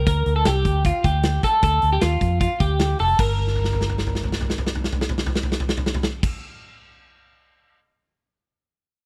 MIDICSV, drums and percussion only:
0, 0, Header, 1, 2, 480
1, 0, Start_track
1, 0, Key_signature, -2, "minor"
1, 0, Tempo, 391645
1, 78, Time_signature, 4, 2, 24, 8
1, 11097, End_track
2, 0, Start_track
2, 0, Title_t, "Drums"
2, 79, Note_on_c, 9, 42, 94
2, 82, Note_on_c, 9, 36, 109
2, 202, Note_off_c, 9, 42, 0
2, 204, Note_off_c, 9, 36, 0
2, 317, Note_on_c, 9, 42, 56
2, 439, Note_off_c, 9, 42, 0
2, 555, Note_on_c, 9, 38, 114
2, 555, Note_on_c, 9, 42, 98
2, 678, Note_off_c, 9, 38, 0
2, 678, Note_off_c, 9, 42, 0
2, 798, Note_on_c, 9, 36, 79
2, 800, Note_on_c, 9, 42, 75
2, 920, Note_off_c, 9, 36, 0
2, 923, Note_off_c, 9, 42, 0
2, 1034, Note_on_c, 9, 42, 99
2, 1039, Note_on_c, 9, 36, 93
2, 1157, Note_off_c, 9, 42, 0
2, 1161, Note_off_c, 9, 36, 0
2, 1279, Note_on_c, 9, 36, 91
2, 1283, Note_on_c, 9, 42, 73
2, 1401, Note_off_c, 9, 36, 0
2, 1405, Note_off_c, 9, 42, 0
2, 1510, Note_on_c, 9, 42, 74
2, 1515, Note_on_c, 9, 38, 106
2, 1632, Note_off_c, 9, 42, 0
2, 1637, Note_off_c, 9, 38, 0
2, 1755, Note_on_c, 9, 42, 77
2, 1756, Note_on_c, 9, 36, 80
2, 1878, Note_off_c, 9, 36, 0
2, 1878, Note_off_c, 9, 42, 0
2, 1990, Note_on_c, 9, 42, 93
2, 1995, Note_on_c, 9, 36, 96
2, 2112, Note_off_c, 9, 42, 0
2, 2118, Note_off_c, 9, 36, 0
2, 2228, Note_on_c, 9, 42, 57
2, 2350, Note_off_c, 9, 42, 0
2, 2469, Note_on_c, 9, 38, 109
2, 2469, Note_on_c, 9, 42, 92
2, 2591, Note_off_c, 9, 38, 0
2, 2591, Note_off_c, 9, 42, 0
2, 2709, Note_on_c, 9, 36, 79
2, 2712, Note_on_c, 9, 42, 75
2, 2832, Note_off_c, 9, 36, 0
2, 2835, Note_off_c, 9, 42, 0
2, 2948, Note_on_c, 9, 42, 92
2, 2950, Note_on_c, 9, 36, 92
2, 3070, Note_off_c, 9, 42, 0
2, 3073, Note_off_c, 9, 36, 0
2, 3190, Note_on_c, 9, 36, 89
2, 3196, Note_on_c, 9, 42, 75
2, 3313, Note_off_c, 9, 36, 0
2, 3318, Note_off_c, 9, 42, 0
2, 3422, Note_on_c, 9, 42, 76
2, 3427, Note_on_c, 9, 38, 107
2, 3545, Note_off_c, 9, 42, 0
2, 3550, Note_off_c, 9, 38, 0
2, 3663, Note_on_c, 9, 46, 78
2, 3786, Note_off_c, 9, 46, 0
2, 3908, Note_on_c, 9, 49, 92
2, 3910, Note_on_c, 9, 36, 95
2, 4030, Note_off_c, 9, 49, 0
2, 4032, Note_off_c, 9, 36, 0
2, 4143, Note_on_c, 9, 43, 44
2, 4255, Note_on_c, 9, 38, 46
2, 4265, Note_off_c, 9, 43, 0
2, 4357, Note_on_c, 9, 43, 50
2, 4378, Note_off_c, 9, 38, 0
2, 4465, Note_on_c, 9, 38, 49
2, 4479, Note_off_c, 9, 43, 0
2, 4568, Note_on_c, 9, 43, 51
2, 4588, Note_off_c, 9, 38, 0
2, 4668, Note_on_c, 9, 38, 51
2, 4690, Note_off_c, 9, 43, 0
2, 4773, Note_on_c, 9, 43, 51
2, 4790, Note_off_c, 9, 38, 0
2, 4881, Note_on_c, 9, 38, 53
2, 4896, Note_off_c, 9, 43, 0
2, 4983, Note_on_c, 9, 43, 55
2, 5003, Note_off_c, 9, 38, 0
2, 5089, Note_on_c, 9, 38, 53
2, 5106, Note_off_c, 9, 43, 0
2, 5189, Note_on_c, 9, 43, 60
2, 5211, Note_off_c, 9, 38, 0
2, 5299, Note_on_c, 9, 38, 61
2, 5312, Note_off_c, 9, 43, 0
2, 5402, Note_on_c, 9, 43, 62
2, 5422, Note_off_c, 9, 38, 0
2, 5512, Note_on_c, 9, 38, 62
2, 5524, Note_off_c, 9, 43, 0
2, 5614, Note_on_c, 9, 43, 67
2, 5635, Note_off_c, 9, 38, 0
2, 5718, Note_on_c, 9, 38, 66
2, 5737, Note_off_c, 9, 43, 0
2, 5825, Note_on_c, 9, 43, 64
2, 5840, Note_off_c, 9, 38, 0
2, 5935, Note_on_c, 9, 38, 64
2, 5947, Note_off_c, 9, 43, 0
2, 6036, Note_on_c, 9, 43, 74
2, 6058, Note_off_c, 9, 38, 0
2, 6144, Note_on_c, 9, 38, 71
2, 6158, Note_off_c, 9, 43, 0
2, 6241, Note_on_c, 9, 43, 74
2, 6267, Note_off_c, 9, 38, 0
2, 6348, Note_on_c, 9, 38, 70
2, 6364, Note_off_c, 9, 43, 0
2, 6452, Note_on_c, 9, 43, 75
2, 6470, Note_off_c, 9, 38, 0
2, 6562, Note_on_c, 9, 38, 75
2, 6574, Note_off_c, 9, 43, 0
2, 6657, Note_on_c, 9, 43, 76
2, 6685, Note_off_c, 9, 38, 0
2, 6764, Note_on_c, 9, 38, 74
2, 6780, Note_off_c, 9, 43, 0
2, 6864, Note_on_c, 9, 43, 81
2, 6886, Note_off_c, 9, 38, 0
2, 6973, Note_on_c, 9, 38, 81
2, 6987, Note_off_c, 9, 43, 0
2, 7077, Note_on_c, 9, 43, 85
2, 7096, Note_off_c, 9, 38, 0
2, 7185, Note_on_c, 9, 38, 80
2, 7199, Note_off_c, 9, 43, 0
2, 7285, Note_on_c, 9, 43, 86
2, 7308, Note_off_c, 9, 38, 0
2, 7394, Note_on_c, 9, 38, 85
2, 7408, Note_off_c, 9, 43, 0
2, 7516, Note_off_c, 9, 38, 0
2, 7637, Note_on_c, 9, 36, 104
2, 7643, Note_on_c, 9, 49, 94
2, 7760, Note_off_c, 9, 36, 0
2, 7765, Note_off_c, 9, 49, 0
2, 11097, End_track
0, 0, End_of_file